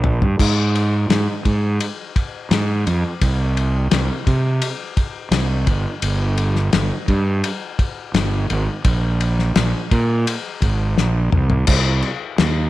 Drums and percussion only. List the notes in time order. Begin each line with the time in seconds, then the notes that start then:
0.04 floor tom
0.22 floor tom
0.39 kick, crash
0.75 ride
1.10 snare, ride
1.45 kick, ride
1.80 ride
2.16 kick, ride
2.51 snare, ride
2.87 ride
3.21 kick, ride
3.57 ride
3.91 snare, ride
4.27 kick, ride
4.62 ride
4.97 kick, ride
5.32 snare, ride
5.67 kick, ride
6.02 ride
6.38 ride
6.56 snare
6.73 snare, ride
7.08 kick, ride
7.44 ride
7.79 kick, ride
8.14 snare, ride
8.50 ride
8.85 kick, ride
9.21 ride
9.39 snare
9.56 snare, ride
9.91 kick, ride
10.27 ride
10.62 kick, ride
10.98 snare
11.32 mid tom
11.50 floor tom
11.67 kick, crash
12.02 crash
12.38 snare, crash